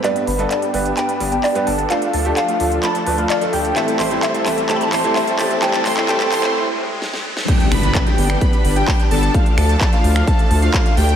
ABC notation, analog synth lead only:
X:1
M:4/4
L:1/16
Q:1/4=129
K:Gmix
V:1 name="Analog synth lead"
g2 b3 g3 b3 g3 a2 | f2 a3 f3 a3 f3 g2 | a2 c'3 a3 a2 c'3 a3 | a2 c'2 a2 c'2 z8 |
g2 b3 g3 b3 g3 a2 | f2 a3 f3 a3 f3 g2 |]